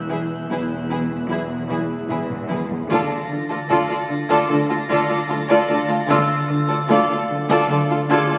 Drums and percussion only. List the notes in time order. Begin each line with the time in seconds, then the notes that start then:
0.51 taiko
1.11 taiko
1.70 taiko
2.10 taiko mid
2.30 taiko mid
2.51 taiko high
2.70 taiko low
2.91 taiko
3.71 taiko
4.30 taiko
4.90 taiko
6.10 taiko
6.91 taiko
7.50 taiko
8.10 taiko